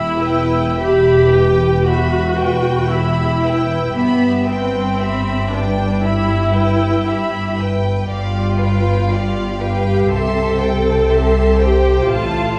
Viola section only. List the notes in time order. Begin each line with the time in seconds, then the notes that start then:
Already playing: E4
0.78 G4
1.86 F#4
2.92 E4
3.97 B3
4.48 C4
5.51 D4
6.02 E4
8.08 F4
9.60 G4
10.10 A4
11.60 G4
12.11 F4